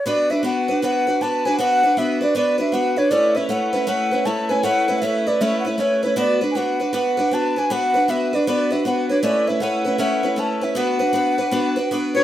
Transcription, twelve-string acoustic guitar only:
X:1
M:4/4
L:1/8
Q:"Swing" 1/4=157
K:Bm
V:1 name="Twelve-string acoustic guitar"
[B,DFB] [DFB] [B,DFB] [DFB] [B,DFB] [DFB] [B,DFB] [DFB] | [B,DFB] [DFB] [B,DFB] [DFB] [B,DFB] [DFB] [B,DFB] [DFB] | [A,CEB] [CEB] [A,CEB] [CEB] [A,CEB] [CEB] [A,CEB] [CEB] | [A,CEB] [CEB] [A,CEB] [CEB] [A,CEB] [CEB] [A,CEB] [CEB] |
[B,DFB] [DFB] [B,DFB] [DFB] [B,DFB] [DFB] [B,DFB] [DFB] | [B,DFB] [DFB] [B,DFB] [DFB] [B,DFB] [DFB] [B,DFB] [DFB] | [A,CEB] [CEB] [A,CEB] [CEB] [A,CEB] [CEB] [A,CEB] [CEB] | [B,DFB] [DFB] [B,DFB] [DFB] [B,DFB] [DFB] [B,DFB] [DFB] |]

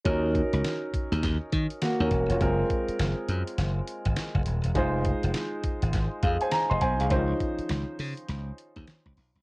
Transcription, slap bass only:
X:1
M:4/4
L:1/16
Q:"Swing 16ths" 1/4=102
K:Ebdor
V:1 name="Slap bass" clef=bass
E,,3 D,, z3 E,, E,, z E, z2 E,, _F,,, =F,,, | G,,,2 z2 G,,, z G,, z G,,,2 z A,,, z G,,, E,,, _F,,, | F,,,3 F,,, z3 A,,, A,,, z F,, z2 F,,, _C,, =C,, | D,,2 z2 D,, z D, z D,,2 z E,, z D,, _C,, =C,, |]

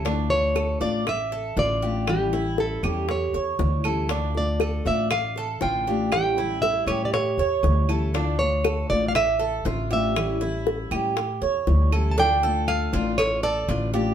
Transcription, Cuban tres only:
X:1
M:4/4
L:1/8
Q:1/4=119
K:Dm
V:1 name="Cuban tres"
D2 A d2 A F G- | G E2 G2 ^c2 A | D2 A d2 A F G- | G E2 G2 ^c2 A |
D2 A d2 A F G- | G E2 G2 ^c2 A | D A2 F2 A F G |]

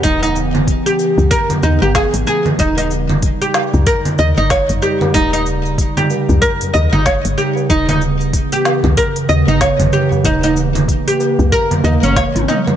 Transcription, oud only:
X:1
M:4/4
L:1/16
Q:"Swing 16ths" 1/4=94
K:none
V:1 name="Oud"
_E E z3 G3 _B z E G _A z A z | _E E z3 G3 _B z _e E _d z G2 | _E E z3 G3 _B z _e E _d z G2 | _E E z3 G3 _B z _e E _d z G2 |
_E E z3 G3 _B z E _D _d z E z |]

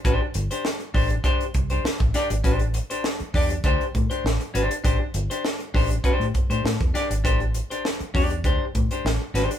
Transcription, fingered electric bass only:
X:1
M:4/4
L:1/16
Q:1/4=100
K:Am
V:1 name="Fingered electric bass" clef=bass
A,,, z G,,, z3 A,,,2 z2 C,,2 z A,,, z ^G,,, | A,,,3 z3 E,,2 D,, z A,, z A,,, z ^G,,, z | A,,, z G,,, z3 A,,,2 z A,, z A,, A,, E,, z ^G,,, | A,,,3 z3 E,,2 D,, z A,, z A,,, z ^G,,, z |]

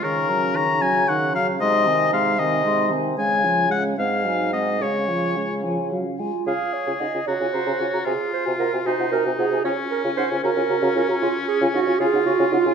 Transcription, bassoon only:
X:1
M:6/8
L:1/16
Q:3/8=76
K:Db
V:1 name="Bassoon" clef=bass
D,12 | C,12 | D,6 A,,6 | D,8- D,2 z2 |
D, z2 D, D, D, D, D, D, D, D, D, | C, z2 C, C, C, C, C, C, C, C, C, | D, z2 D, D, D, D, D, D, D, D, D, | D, z2 D, D, D, D, D, D, D, D, D, |]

